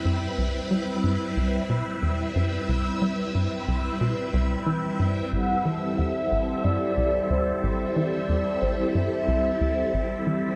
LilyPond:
<<
  \new Staff \with { instrumentName = "Soft synth lead" } { \time 4/4 \key a \dorian \tempo 4 = 91 r1 | r1 | fis''4 e''4 d''4 c''4 | d''4 c''8 e''2 r8 | }
  \new Staff \with { instrumentName = "String machine" } { \time 4/4 \key a \dorian << { e''1~ | e''1~ | e''1~ | e''1 | } \\ { <g c' e' b'>1~ | <g c' e' b'>1 | <g c' e' a'>1~ | <g c' e' a'>1 | } >> }
  \new Staff \with { instrumentName = "Analog synth bass" } { \clef bass \time 4/4 \key a \dorian fis,8 c,8 g8 g,8 c,8 b,8 e,8 fis,8 | c,8 g8 g,8 c,8 b,8 c,8 e8 g,8 | a,,8 e8 e,8 a,,8 g,8 c,8 d,8 a,,8 | e8 e,8 a,,8 g,8 c,8 d,8 a,,8 e8 | }
>>